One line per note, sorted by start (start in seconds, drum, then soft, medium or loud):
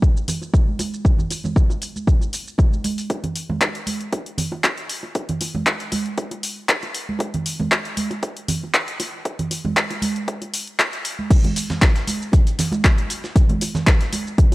0.02 kick loud
0.02 shaker soft
0.17 shaker soft
0.28 open hi-hat loud
0.28 low conga medium
0.28 shaker medium
0.42 high bongo soft
0.42 shaker soft
0.54 kick loud
0.54 shaker soft
0.68 high conga medium
0.79 open hi-hat medium
0.79 high bongo medium
0.79 high conga medium
0.79 shaker medium
0.94 shaker soft
1.05 kick loud
1.05 shaker soft
1.18 low conga medium
1.18 shaker soft
1.30 open hi-hat medium
1.30 high bongo soft
1.30 shaker medium
1.44 high conga medium
1.44 low conga medium
1.44 shaker soft
1.56 kick loud
1.56 shaker soft
1.70 high bongo medium
1.70 shaker soft
1.82 open hi-hat medium
1.82 shaker medium
1.96 high conga medium
1.96 shaker soft
2.07 kick loud
2.07 shaker soft
2.21 high bongo medium
2.21 shaker soft
2.33 open hi-hat loud
2.33 shaker medium
2.48 shaker soft
2.58 kick loud
2.58 high bongo medium
2.58 shaker soft
2.72 high conga medium
2.72 shaker soft
2.84 open hi-hat loud
2.84 high conga loud
2.84 shaker medium
2.98 open hi-hat medium
2.98 shaker soft
3.10 kick loud
3.10 closed hi-hat medium
3.24 closed hi-hat medium
3.24 high bongo soft
3.24 low conga loud
3.36 open hi-hat loud
3.49 high conga medium
3.49 low conga medium
3.61 kick loud
3.61 clap loud
3.61 closed hi-hat medium
3.61 high bongo medium
3.75 closed hi-hat medium
3.87 open hi-hat loud
3.87 high conga medium
4.01 closed hi-hat soft
4.12 kick loud
4.12 closed hi-hat medium
4.12 high bongo soft
4.26 closed hi-hat medium
4.38 open hi-hat loud
4.38 low conga loud
4.52 high bongo medium
4.64 kick loud
4.64 clap loud
4.64 closed hi-hat medium
4.78 closed hi-hat medium
4.89 open hi-hat loud
5.03 high bongo medium
5.15 kick loud
5.15 closed hi-hat medium
5.29 closed hi-hat medium
5.29 low conga loud
5.41 open hi-hat loud
5.41 high bongo medium
5.55 high conga medium
5.55 low conga medium
5.66 kick loud
5.66 clap loud
5.66 closed hi-hat medium
5.80 closed hi-hat medium
5.92 open hi-hat loud
5.92 high bongo medium
5.92 high conga medium
6.06 closed hi-hat soft
6.18 kick loud
6.18 closed hi-hat medium
6.31 closed hi-hat medium
6.31 high bongo medium
6.43 open hi-hat loud
6.69 kick loud
6.69 clap loud
6.69 closed hi-hat medium
6.83 closed hi-hat soft
6.83 high bongo medium
6.94 open hi-hat loud
7.09 high conga medium
7.19 kick loud
7.19 closed hi-hat medium
7.19 high bongo medium
7.34 closed hi-hat medium
7.34 low conga loud
7.46 open hi-hat loud
7.59 high conga medium
7.59 low conga medium
7.71 kick loud
7.71 clap loud
7.71 closed hi-hat medium
7.71 high bongo medium
7.85 closed hi-hat medium
7.97 open hi-hat loud
7.97 high conga medium
8.11 closed hi-hat soft
8.11 high bongo medium
8.23 kick loud
8.23 closed hi-hat medium
8.37 closed hi-hat medium
8.48 open hi-hat loud
8.48 low conga loud
8.63 high bongo soft
8.74 kick loud
8.74 clap loud
8.74 closed hi-hat medium
8.88 closed hi-hat medium
9.00 open hi-hat loud
9.00 high bongo medium
9.25 kick loud
9.25 closed hi-hat medium
9.39 closed hi-hat medium
9.39 low conga medium
9.51 open hi-hat loud
9.51 high bongo soft
9.65 high conga medium
9.65 low conga medium
9.77 kick loud
9.77 clap loud
9.77 closed hi-hat medium
9.90 closed hi-hat soft
9.90 high bongo medium
10.02 open hi-hat loud
10.02 high conga loud
10.16 closed hi-hat soft
10.28 kick loud
10.28 closed hi-hat medium
10.42 closed hi-hat medium
10.42 high bongo medium
10.54 open hi-hat loud
10.67 closed hi-hat soft
10.79 kick loud
10.79 clap loud
10.79 closed hi-hat medium
10.79 high bongo medium
10.93 closed hi-hat soft
11.05 open hi-hat loud
11.19 high conga medium
11.30 kick loud
11.30 closed hi-hat loud
11.30 closed hi-hat medium
11.30 crash loud
11.30 shaker soft
11.44 closed hi-hat medium
11.44 high bongo medium
11.44 high conga medium
11.44 low conga medium
11.56 closed hi-hat medium
11.56 open hi-hat loud
11.56 shaker medium
11.70 snare medium
11.70 low conga medium
11.70 shaker soft
11.82 kick loud
11.82 snare loud
11.82 clap loud
11.82 closed hi-hat loud
11.82 closed hi-hat medium
11.82 high bongo medium
11.82 shaker soft
11.96 snare soft
11.96 closed hi-hat medium
12.07 closed hi-hat medium
12.07 open hi-hat loud
12.07 high conga medium
12.07 shaker medium
12.22 shaker soft
12.32 kick loud
12.32 closed hi-hat medium
12.32 high bongo medium
12.32 shaker soft
12.47 closed hi-hat soft
12.47 closed hi-hat medium
12.47 shaker soft
12.59 snare soft
12.59 closed hi-hat medium
12.59 open hi-hat loud
12.59 low conga loud
12.59 shaker medium
12.72 closed hi-hat soft
12.72 high bongo medium
12.72 high conga loud
12.72 shaker soft
12.84 kick loud
12.84 snare loud
12.84 clap loud
12.84 closed hi-hat medium
12.84 shaker soft
12.98 closed hi-hat medium
13.10 closed hi-hat medium
13.10 open hi-hat loud
13.10 shaker medium
13.24 snare soft
13.24 high bongo medium
13.24 shaker soft
13.36 kick loud
13.36 closed hi-hat medium
13.36 shaker soft
13.49 closed hi-hat medium
13.49 high conga loud
13.49 low conga medium
13.61 closed hi-hat medium
13.61 open hi-hat loud
13.61 high bongo medium
13.61 shaker medium
13.75 snare soft
13.75 low conga loud
13.75 shaker soft
13.87 kick loud
13.87 snare loud
13.87 clap loud
13.87 closed hi-hat medium
13.87 shaker soft
14.01 snare soft
14.01 closed hi-hat medium
14.13 closed hi-hat medium
14.13 open hi-hat loud
14.13 high bongo soft
14.13 high conga medium
14.13 shaker medium
14.27 shaker soft
14.38 kick loud
14.38 closed hi-hat medium
14.38 shaker soft
14.52 high bongo medium